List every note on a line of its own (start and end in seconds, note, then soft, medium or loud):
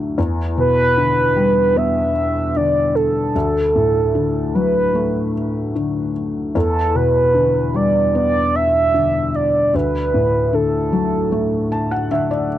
0.00 0.14 D2 medium
0.00 0.15 D3 soft
0.00 0.19 F#3 soft
0.00 0.13 A3 soft
0.18 3.31 E2 medium
0.57 2.12 B2 soft
0.57 1.78 B4 medium
0.97 2.51 D3 soft
1.36 2.91 G3 soft
1.76 3.31 B3 soft
1.76 2.58 E5 loud
2.56 3.33 D3 soft
2.56 2.97 D5 loud
2.95 4.54 A4 medium
3.35 6.52 D2 medium
3.76 5.31 A2 soft
4.15 5.71 D3 soft
4.55 6.12 F#3 soft
4.55 5.31 B4 medium
4.95 6.51 A3 soft
5.75 6.53 D3 soft
6.55 9.70 E2 medium
6.55 6.97 A4 medium
6.95 8.51 B2 soft
6.95 7.77 B4 medium
7.34 8.90 D3 soft
7.74 9.30 G3 soft
7.74 8.15 D5 medium
8.15 9.70 B3 soft
8.15 8.57 D5 medium
8.55 9.37 E5 loud
8.94 9.72 D3 soft
9.35 9.77 D5 medium
9.74 12.58 D2 medium
9.74 10.56 B4 medium
10.14 11.68 A2 soft
10.53 12.07 D3 soft
10.53 12.12 A4 medium
10.92 12.47 F#3 soft
11.32 12.58 A3 soft
11.72 11.90 A5 medium
11.91 12.10 F#5 medium
12.11 12.58 D3 soft
12.11 12.30 E5 medium
12.31 12.58 D5 medium